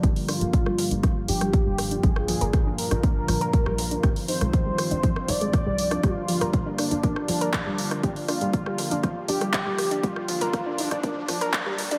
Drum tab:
HH |xooxx-oxx-oxx-ox|x-oxx-oxx-oxx-ox|xooxx-oxx-oxx-ox|x-oxx-oxx-oxx-ox|
CP |----------------|----------------|----------------|------------x---|
SD |--r--r--r--r--r-|-r--r--r--r--r--|r--r--r--r--r--r|r--r--r--r--r--r|
T2 |o-----o-----o---|--o-----o-----o-|----o-----o-----|----o-----o-----|
BD |o---o---o---o---|o---o---o---o---|o---o---o---o---|o---o---o---o---|

HH |xooxx-oxx-oxx-ox|x-oxx-oxx-oxx-ox|
CP |------------x---|------------x---|
SD |--r--r--r--r--r-|-r--r--r--r--r--|
T2 |o-----o-----o---|--o-----o-----o-|
BD |o---o---o---o---|o---o---o---o---|